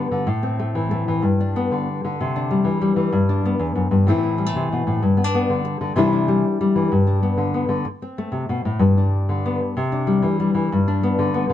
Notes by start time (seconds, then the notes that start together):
Already playing: G2 D3 B3 D4
0.11 D3
0.27 A2
0.43 C4
0.59 A3
0.75 E3
0.91 A3
1.08 E3
1.22 G2
1.40 D4
1.56 B3
1.71 D3
2.05 D3
2.21 C3
2.36 D4
2.51 G3
2.64 E3
2.81 G3
2.96 E3
3.12 G2
3.29 D4
3.45 B3
3.59 E2
3.75 F#2
3.91 G2
4.07 A2 E3 A3 C4 E4
4.23 C4
4.38 G3
4.46 A3
4.55 C3
4.72 B2
4.87 A2
5.03 G2
5.17 B3
5.24 D4
5.35 B3
5.50 D3
5.65 muted nylon-string guitar stroke
5.81 D3
5.96 C3 E3 G3 D4 E4
6.13 D4
6.28 G3
6.61 G3
6.76 E3
6.92 G2
7.07 D4
7.23 B3
7.37 D3
7.54 B3
7.69 D3
7.85 muted nylon-string guitar stroke
8.02 C4
8.18 A3
8.32 C3
8.49 B2
8.65 A2
8.79 G2
8.98 D4
9.29 D3
9.46 B3
9.77 C3
9.92 D4
10.07 G3
10.22 E3
10.40 G3
10.54 E3
10.72 G2
10.88 D4
11.03 B3
11.19 D3
11.34 B3
11.50 D3